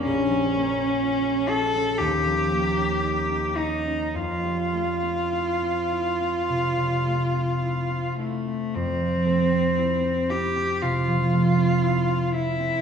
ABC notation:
X:1
M:4/4
L:1/16
Q:1/4=58
K:Eblyd
V:1 name="Cello"
_D6 A2 G6 E2 | F12- F2 A,2 | C6 G2 F6 =E2 |]
V:2 name="Harp"
[B,,,G,B,G] G, B, _D F D F D E,, F, B, D E D E D | F,, G, A, C =E C E C C, G, A, C E C E C | F,, F, A, C =E C E C C, F, A, C E C E C |]